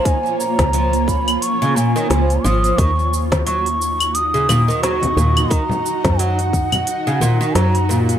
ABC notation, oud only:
X:1
M:4/4
L:1/16
Q:"Swing 16ths" 1/4=88
K:Ebm
V:1 name="Oud" clef=bass
E, z3 F, z4 D, B,, E, F, z F,2 | E, z3 G, z4 D, B,, E, G, z B,,2 | E, z3 G, z4 D, B,, E, G, z B,,2 |]